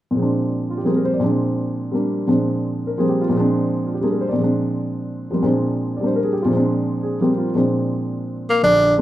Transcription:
0.11 grand piano A#2 F3
0.16 grand piano G#3 C4
0.22 grand piano D4
0.70 grand piano F4
0.78 grand piano G4
0.84 grand piano F3 G3 A#3 C4 G#4
0.96 grand piano A#4
1.05 grand piano C5
1.14 grand piano D5
1.20 grand piano A#2 F3 G#3
1.24 grand piano C4 D4
1.92 grand piano G3 A#3 D4
2.27 grand piano A#2 F3 G#3 C4 D4
2.87 grand piano A#4
2.98 grand piano F3 G3 A#3 C4 G#4
3.09 grand piano G4
3.21 grand piano F4
3.29 grand piano A#2 F3
3.34 grand piano G#3 C4
3.40 grand piano D4
3.86 grand piano F4
3.95 grand piano G4
4.01 grand piano G3 A#3 D4 G#4
4.11 grand piano A#4
4.21 grand piano C5
4.29 grand piano A#2 D5
4.35 grand piano F3 G#3
4.41 grand piano C4 D4
5.31 grand piano F3 G3 A#3 C4
5.43 grand piano A#2 F3 G#3 C4 D4
5.97 grand piano D5
6.01 grand piano G3 A#3 D4
6.06 grand piano C5
6.16 grand piano A#4
6.23 grand piano G#4
6.33 grand piano G4
6.42 grand piano A#2 F4
6.48 grand piano F3 G#3
6.53 grand piano C4 D4
7.03 grand piano G#4
7.20 grand piano F3 G3 A#3 C4 G4
7.38 grand piano F4
7.55 grand piano A#2 F3 G#3 C4 D4
8.50 tenor saxophone A#3
8.63 grand piano A#1 D3, tenor saxophone D4
8.98 grand piano G#3 A#3 C4 D4

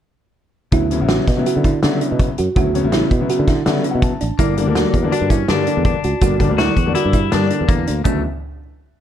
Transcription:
0.72 fretless electric bass D2, grand piano C#3 F#3 B3 E4, synth arpeggio sound E4, kick, closed hi-hat
0.91 grand piano C#3 F#3 B3 E4, closed hi-hat
1.00 fretless electric bass A1, grand piano C#3 F#3 B3 E4
1.09 synth arpeggio sound F#4, snare, closed hi-hat
1.27 fretless electric bass B2, kick, snare, closed hi-hat
1.37 grand piano C#3 F#3 B3 E4
1.46 synth arpeggio sound F#4, closed hi-hat
1.56 fretless electric bass D3
1.64 synth arpeggio sound E4, kick, closed hi-hat
1.82 grand piano C#3 F#3 B3 E4, fretless electric bass D3, snare, closed hi-hat
2.01 synth arpeggio sound D4, closed hi-hat
2.12 fretless electric bass B2
2.19 kick, closed hi-hat
2.38 fretless electric bass F#2, synth arpeggio sound F#4, closed hi-hat
2.56 fretless electric bass D2, grand piano C#3 F#3 B3 E4, synth arpeggio sound F#4, kick, closed hi-hat
2.74 grand piano C#3 F#3 B3 C#4, closed hi-hat
2.83 fretless electric bass A1, grand piano C#3 F#3 B3 E4
2.92 synth arpeggio sound E4, snare, closed hi-hat
3.11 fretless electric bass B2, kick, closed hi-hat
3.20 grand piano C#3 F#3 B3 E4
3.29 synth arpeggio sound F#4, closed hi-hat
3.39 fretless electric bass D3
3.48 synth arpeggio sound E4, kick, snare, closed hi-hat
3.65 grand piano C#3 F#3 B3 E4, fretless electric bass D3, snare, closed hi-hat
3.84 synth arpeggio sound D4, grand piano E5, closed hi-hat
3.91 fretless electric bass B2, grand piano F#5
4.02 grand piano A5, kick, closed hi-hat
4.21 fretless electric bass A1, synth arpeggio sound D4, closed hi-hat
4.39 fretless electric bass G1, grand piano D3 G3 A#3 D4, clean electric guitar A#3, synth arpeggio sound E4, kick, closed hi-hat, shaker
4.57 grand piano D3 G3 A#3 D4, closed hi-hat
4.66 fretless electric bass D2, grand piano D3 G3 A#3 D4
4.75 synth arpeggio sound F#4, snare, closed hi-hat, shaker
4.94 fretless electric bass E2, kick, closed hi-hat
5.02 grand piano D3 G3 A#3 D4
5.12 clean electric guitar D4, synth arpeggio sound F#4, closed hi-hat
5.21 fretless electric bass G2
5.30 clean electric guitar C#4, synth arpeggio sound E4, kick, closed hi-hat, shaker
5.48 fretless electric bass G2, grand piano D3 G3 A#3 D4, clean electric guitar D4, snare, closed hi-hat
5.67 synth arpeggio sound D4, closed hi-hat
5.77 fretless electric bass E2
5.85 clean electric guitar D4, kick, closed hi-hat
6.04 fretless electric bass C#2, synth arpeggio sound F#4, closed hi-hat, shaker
6.21 fretless electric bass G1, grand piano D3 G3 A#3 D4, synth arpeggio sound F#4, kick, closed hi-hat, shaker
6.39 grand piano D3 G3 A#3 D4, kick, closed hi-hat
6.49 fretless electric bass D2, grand piano D3 G3 A#3 D4
6.58 synth arpeggio sound E4, clean electric guitar F#4, snare, closed hi-hat, shaker
6.77 fretless electric bass E2, kick, closed hi-hat, shaker
6.86 grand piano D3 G3 A#3 D4
6.95 clean electric guitar E4, synth arpeggio sound F#4, closed hi-hat
7.05 fretless electric bass G2
7.13 synth arpeggio sound E4, kick, closed hi-hat, shaker
7.31 fretless electric bass G2, grand piano D3 G3 A#3 D4, clean electric guitar D4, snare, closed hi-hat
7.50 synth arpeggio sound D4, closed hi-hat, shaker
7.61 fretless electric bass E2
7.68 fretless electric bass E2, clean electric guitar A#3, kick, closed hi-hat, shaker
7.87 fretless electric bass D2, synth arpeggio sound D4, closed hi-hat
8.04 fretless electric bass D2, grand piano C#3 F#3 B3 E4, clean electric guitar A3, synth arpeggio sound D4, kick, floor tom, shaker

